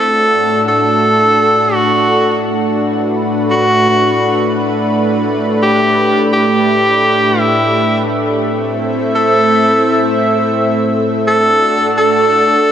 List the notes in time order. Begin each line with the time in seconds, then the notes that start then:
Already playing: A2 A3 D4 F#4 A4
0.00 A4
0.69 A4
1.74 F#4
2.80 B4
3.51 F#4
5.63 G4
6.33 G4
7.39 E4
8.45 C4 E4 E5
9.15 A4
11.27 D4 F#4 A4
11.98 A4